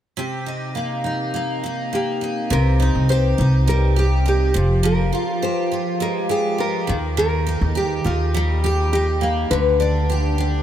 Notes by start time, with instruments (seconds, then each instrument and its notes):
0.17 steel-string acoustic guitar C3 G4
0.46 steel-string acoustic guitar D#4
0.75 steel-string acoustic guitar A#3
1.04 steel-string acoustic guitar D#4
1.34 steel-string acoustic guitar A#3
1.64 steel-string acoustic guitar D#4
1.93 steel-string acoustic guitar A#3, nylon-string guitar G4
2.21 steel-string acoustic guitar D#4
2.50 upright bass C2, steel-string acoustic guitar C3, nylon-string guitar A#4
2.80 steel-string acoustic guitar D#4
2.95 upright bass C2
3.09 steel-string acoustic guitar G4, nylon-string guitar C5
3.38 upright bass C2, steel-string acoustic guitar D#4
3.68 steel-string acoustic guitar G3, nylon-string guitar A#4
3.96 steel-string acoustic guitar G4, nylon-string guitar G4
4.26 steel-string acoustic guitar D#4, nylon-string guitar G4
4.54 upright bass F1, steel-string acoustic guitar F3
4.83 steel-string acoustic guitar F3, nylon-string guitar A#4
5.13 steel-string acoustic guitar F4
5.42 steel-string acoustic guitar G4, nylon-string guitar C5
5.72 steel-string acoustic guitar F4
6.00 steel-string acoustic guitar G#3, nylon-string guitar A#4
6.29 steel-string acoustic guitar G4, nylon-string guitar G#4
6.58 steel-string acoustic guitar F4, nylon-string guitar A#4
6.87 upright bass D#2, steel-string acoustic guitar D#3
7.17 steel-string acoustic guitar D#3, nylon-string guitar A#4
7.46 steel-string acoustic guitar D#4
7.61 upright bass D#2
7.75 steel-string acoustic guitar G4, nylon-string guitar G4
8.04 upright bass D#2, steel-string acoustic guitar D#4, nylon-string guitar F4
8.34 steel-string acoustic guitar G3
8.64 steel-string acoustic guitar G4, nylon-string guitar G4
8.93 steel-string acoustic guitar D#4, nylon-string guitar G4
9.21 steel-string acoustic guitar A#3
9.51 upright bass D2, steel-string acoustic guitar D3, nylon-string guitar B4
9.80 steel-string acoustic guitar D4, nylon-string guitar D5
10.10 steel-string acoustic guitar G4
10.38 steel-string acoustic guitar D4